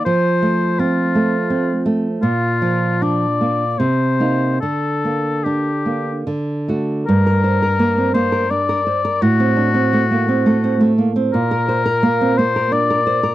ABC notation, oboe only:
X:1
M:3/4
L:1/8
Q:1/4=84
K:Gm
V:1 name="Oboe"
c2 F3 z | F2 d2 c2 | A2 G2 z2 | B3 c d2 |
^F4- F z | B3 c d2 |]